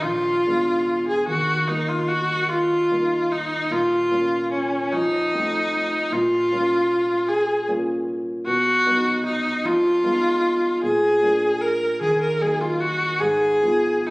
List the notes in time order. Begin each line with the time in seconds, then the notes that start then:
0.03 A#1 F4
0.46 G#3 B3 D4
1.08 G#4
1.27 D#2 F#4
1.68 A#3 D#4
1.89 F4
2.08 F#4
2.49 F4
2.91 A#3 D#4
3.31 D#4
3.70 A#2 F4
4.11 A#3 C#4 F4
4.52 C#4
4.92 F2 D#4
5.34 A3 C4 F4
6.12 A#2 F4
6.52 A#3 C#4 F4
7.28 G#4
7.68 A#3 C#4 F4
8.46 B2 F#4
8.86 F#3 B3 D#4
9.26 D#4
9.65 F2 F4
10.03 G#3 B3 D#4
10.83 A#2 G#4
11.22 F3 A#3 D4
11.61 A#4
12.01 D#2 G#4
12.21 A#4
12.40 F#3 A#3 D#4 G#4
12.61 F4
12.80 F#4
13.20 G#2 G#4
13.63 F3 B3 F4
14.07 D#4